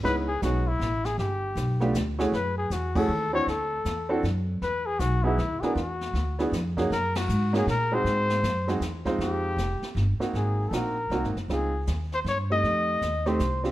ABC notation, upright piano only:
X:1
M:3/4
L:1/8
Q:"Swing" 1/4=157
K:G#phr
V:1 name="Upright piano"
[G,B,CDE] z [G,B,CDF] z3 | z3 [A,B,=D=F=G] z [A,CE^F^G] | z3 [A,CEFG] z [^B,=DEF^B] | z3 [=C=DEFA] z2 |
z3 [B,DEFG] z [B,=DEF^A] | z3 [B,=DEFG] z [^A,C^DFG] | z3 [^A,CDFG] z [G,^B,DFG]- | [G,^B,DFG]2 z [G,B,DFG] z [G,B,D^E^B]- |
[K:Fm] [^G,^B,^D^E^B]2 z3 [_B,C_E_G]- | [B,CE_G]2 [B,CEG] z [B,CEG] z | [A,CEF] z4 [=A,CEG]- | [=A,CEG]2 z [A,CEG] z [C=DFG] |]